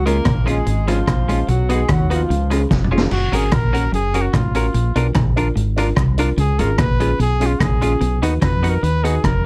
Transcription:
Already playing: C#2
0.05 G#3 A#3 C#4 F4 A#4, closed hi-hat
0.25 A#1 A#2, kick, cross-stick, clap, closed hi-hat
0.46 G#3 C#4 F4 G#4, closed hi-hat
0.66 G#1 G#2 C#4 F4, closed hi-hat
0.87 F3 G#3 C#4 F4, cross-stick, closed hi-hat
1.07 A#1 A#2, kick, cross-stick, clap, closed hi-hat
1.28 G#3 C#4 F4, closed hi-hat
1.48 B1 B2 F#3 F#4, closed hi-hat
1.69 G#3 B3 D#4 F#4 G#4, closed hi-hat
1.89 D#2 D#3 F#3 D#4 F#4, kick, cross-stick, clap, closed hi-hat
2.10 F3 B3 D#4 F4 F#4, closed hi-hat
2.30 C#2 C#3 F4 G#4, closed hi-hat
2.50 G#3 C#4 F4 G#4, cross-stick, closed hi-hat
2.71 F1 F2, kick, snare, clap
2.84 mid tom
2.91 G#3 C#4 F4 G#4
2.98 snare
3.11 F#1 F#2 F#4, crash
3.32 G#1 G#2 C#4 F#4 G#4 A#4, closed hi-hat
3.52 A#1 A#2 F#4 A#4, kick, cross-stick, clap, closed hi-hat
3.73 C#4 F#4 A#4, closed hi-hat
3.92 F#1 F#2 F#4 G#4 A#4, closed hi-hat
4.14 C#4 F#4 A#4, closed hi-hat
4.21 F#4
4.33 A1 A2 F4, kick, cross-stick, clap, closed hi-hat
4.54 C#4 F#4 A#4, closed hi-hat
4.74 A#1 A#2, closed hi-hat
4.96 B1 B2 D4 F4 A#4, closed hi-hat
5.15 A#1 A#2 F4, kick, cross-stick, clap, closed hi-hat
5.36 D4 F4 A#4, closed hi-hat
5.56 G#1 G#2 F4 A#4, closed hi-hat
5.76 D4 F4 A#4, cross-stick, closed hi-hat
5.96 C2 C3, kick, cross-stick, clap, closed hi-hat
6.18 D4 F4 A#4, closed hi-hat
6.37 C#2 C#3 G#4, closed hi-hat
6.58 G#1 G#2 G#3 C#4 F4 G#4 A#4, closed hi-hat
6.78 A#1 A#2 F4 G#4 B4, kick, cross-stick, clap, closed hi-hat
6.99 G#3 C#4 F4 G#4, closed hi-hat
7.19 B1 B2 F4 G#4, closed hi-hat
7.40 G#3 C#4 F4 G#4, closed hi-hat
7.46 F4
7.60 A#1 A#2 G#4, kick, cross-stick, clap, closed hi-hat
7.81 G#3 C#4 F4 G#4, closed hi-hat
8.01 B1 B2, closed hi-hat
8.22 D#2 D#3 B3 D#4 F#4 B4, closed hi-hat
8.41 F2 F3 F#4 B4, kick, cross-stick, clap, closed hi-hat
8.62 B3 D#4 F#4 B4, closed hi-hat
8.69 A#4
8.82 D#2 D#3 F#4 B4, closed hi-hat
9.03 B3 D#4 F#4 G#4 B4, closed hi-hat
9.24 F1 F2 A#4, kick, cross-stick, clap, closed hi-hat

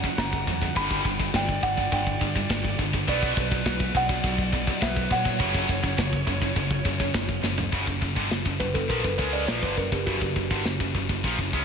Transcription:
Already playing: F#5 A#5
0.04 F#2 C#3, kick
0.18 F#1 F#2 C#3 F#5 A#5, kick, snare, crash
0.33 kick
0.47 E2 F#2 C#3, kick
0.62 F#2 C#3, kick
0.76 G1 G2 D3 G3 G5 B5, kick, crash
0.91 kick
1.05 G1 G2 D3, kick
1.20 G2 D3, kick
1.34 G1 G2 D3 D5 G5, kick, snare, crash
1.49 kick
1.63 G1 G2 D3 D5 F#5, kick
1.77 G2 D3, kick
1.92 G1 G2 D3 D5 G5, kick, crash
2.07 kick
2.21 G2 D3, kick
2.36 G2 D3, kick
2.50 G1 G2 D3, kick, snare, crash
2.64 kick
2.79 G1 G2 D3, kick
2.93 G2 D3, kick
3.07 B1 B2 F#3 B3 B4 D5, kick, crash
3.22 kick
3.37 B1 B2 F#3, kick
3.51 B2 F#3, kick
3.66 B1 B2 F#3, kick, snare, crash
3.80 kick
3.95 B1 B2 F#3 D5 F#5, kick
4.09 B2 F#3, kick
4.24 B1 B2 F#3, kick, crash
4.38 kick
4.52 B2 F#3, kick
4.67 B2 F#3, kick
4.81 B1 B2 F#3 B4 E5, kick, snare, crash
4.96 kick
5.10 A#2 B2 F#3 F#5, kick
5.15 C#5
5.25 B2 F#3, kick
5.39 F#1 F#2 C#3 F#3, kick, crash
5.54 kick
5.68 F#1 F#2 C#3, kick
5.83 F#2 C#3, kick
5.98 F#1 F#2 C#3, kick, snare, crash
6.13 kick
6.27 F#1 F#2 C#3, kick
6.42 F#2 C#3, kick
6.56 F#1 F#2 C#3, kick, crash
6.71 kick
6.85 F#2 C#3, kick
7.00 F#2 C#3, kick
7.14 F#1 F#2 C#3, kick, snare, crash
7.29 kick
7.43 F#1 F#2 C#3, snare
7.58 F#2 C#3, floor tom
7.72 F#1 F#2 C#3, kick, open hi-hat
7.87 F#1 F#2 C#3, kick
8.02 F#1 F#2 C#3, kick
8.16 G1 G2 D3, kick
8.30 F#1 F#2 C#3, snare, open hi-hat
8.45 F#1 F#2 C#3, kick
8.60 F#1 F#2 C#3 B4, kick
8.74 F#1 F#2 C#3 A4, kick
8.89 A#1 A#2 F3 A#4, kick, open hi-hat
9.04 F#1 F#2 C#3 B4, kick
9.18 C#2 C#3 G#3 C#4 C#5, kick
9.33 D5
9.48 A#1 A#2 F3 C#5, snare, open hi-hat
9.63 G1 G2 D3 B4, kick
9.77 F#1 F#2 C#3 A#4, kick
9.92 F#1 F#2 C#3 G4, kick
10.06 F#1 F#2 C#3 F#4, kick, open hi-hat
10.21 F#1 F#2 C#3, kick
10.36 F#1 F#2 C#3, kick
10.51 G1 G2 D3, kick
10.65 F#1 F#2 C#3, snare, open hi-hat
10.80 F#1 F#2 C#3, kick
10.95 F#1 F#2 C#3, kick
11.09 F#1 F#2 C#3, kick
11.24 A#1 A#2 F3, kick, open hi-hat
11.39 F#1 F#2 C#3, kick
11.53 C#2 C#3 G#3 C#4, kick

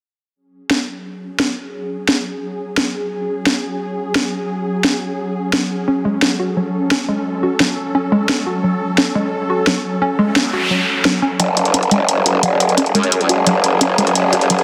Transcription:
0.36 F#3 C#4 G#4
0.71 snare
1.40 snare
2.09 snare
2.77 snare
3.46 snare
4.15 snare
4.84 snare
5.53 snare
5.88 C#4 A4
6.05 G#3
6.22 snare
6.40 F#4
6.57 F#3
6.91 C#4, snare
7.09 G#3
7.43 F#4
7.60 F#3, snare
7.95 C#4
8.12 G#3
8.29 snare
8.47 F#4
8.64 F#3
8.98 C#4, snare
9.15 G#3
9.50 F#4
9.67 F#3, snare
10.02 C#4, noise sweep
10.19 G#3
10.36 snare
10.53 F#4
10.71 F#3
11.05 F#3, snare
11.22 C#4
11.40 F#1 F#3 C#4 G#4, closed hi-hat, riser
11.57 closed hi-hat
11.65 closed hi-hat
11.74 C#4, closed hi-hat
11.83 closed hi-hat
11.91 F#1 G#3, closed hi-hat
12.09 closed hi-hat
12.26 F#4, closed hi-hat
12.43 F#3, closed hi-hat
12.60 closed hi-hat
12.69 closed hi-hat
12.78 C#4, closed hi-hat
12.86 closed hi-hat
12.95 F#2 G#3, closed hi-hat
13.03 closed hi-hat
13.12 closed hi-hat
13.21 closed hi-hat
13.29 F#1 F#4, closed hi-hat
13.46 F#3, closed hi-hat
13.64 closed hi-hat
13.81 F#1 C#4, closed hi-hat
13.98 G#3, closed hi-hat
14.07 closed hi-hat
14.15 F#1, closed hi-hat
14.33 F#4, closed hi-hat
14.41 closed hi-hat
14.50 F#3, closed hi-hat
14.59 closed hi-hat

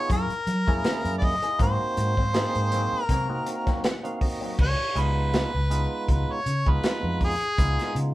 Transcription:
Already playing: C#5
0.10 F#2 F#3 A#3 E4 G#4 A#4, kick, closed hi-hat
0.29 muted fingered electric bass stroke, muted clean electric guitar stroke, closed hi-hat
0.47 F#3, muted clean electric guitar stroke, closed hi-hat
0.67 F#2 A#3 C#4 E4 G#4, kick
0.84 muted fingered electric bass stroke, snare, closed hi-hat
1.05 F#2, muted clean electric guitar stroke, closed hi-hat
1.18 D5, muted clean electric guitar stroke
1.22 D#5, kick, open hi-hat
1.42 A#3 E4 G#4, closed hi-hat
1.59 G#2 F#3 A#3 C4 D#4 F#4 C5, kick, closed hi-hat
1.80 muted clean electric guitar stroke
1.97 G#2, muted clean electric guitar stroke, closed hi-hat
2.17 F#3 A#3 C4, kick
2.33 A#3 C4 D#4 G#4, muted clean electric guitar stroke, snare, closed hi-hat
2.55 G#2, closed hi-hat
2.72 G#2 F#3 A#3 C4, closed hi-hat
2.93 muted fingered electric bass stroke, muted clean electric guitar stroke
3.04 A#4
3.09 G#2 C3 F#3 A#3 C4, kick, closed hi-hat
3.29 A#3 C4 D#4 F#4, muted clean electric guitar stroke
3.46 muted clean electric guitar stroke, closed hi-hat
3.66 F#3 A#3 C4, kick, snare, closed hi-hat
3.84 F#5, snare, closed hi-hat
4.03 A#3 C4 D#4 F#4 F5, muted clean electric guitar stroke, closed hi-hat
4.21 D#5, muted clean electric guitar stroke, kick, open hi-hat
4.41 F#3 A#3 C4
4.59 C#2, kick, crash
4.63 C#5
4.95 C#2 G#3 B3 D#4 F4, closed hi-hat
5.00 B4
5.34 snare, closed hi-hat
5.54 C#2
5.70 G#3 B3 D#4 F4, closed hi-hat
6.08 C#2 B4, kick, closed hi-hat
6.33 C#5
6.46 C#3, closed hi-hat
6.66 C#2 G#3 B3 D#4 F4 B4, kick
6.83 snare, closed hi-hat
7.03 F2
7.21 G#4, kick, open hi-hat
7.41 closed hi-hat
7.58 C#2 G#3 B3 D#4 F4, kick, closed hi-hat
7.79 snare, closed hi-hat
7.95 C#3, closed hi-hat

